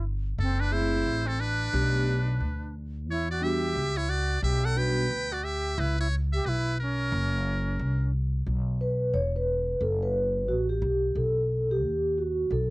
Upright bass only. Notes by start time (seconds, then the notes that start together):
Already playing: G1
0.38 F#1
1.06 A1
1.73 B1
2.40 D2
3.08 E2
3.75 C#2
4.42 B1
5.10 D2
5.78 C#2
6.45 B1
7.12 F#1
7.79 C2
8.46 B1
9.14 E1
9.81 F#1
10.48 A1
10.82 B1
11.15 B1
11.83 D#2
12.51 B1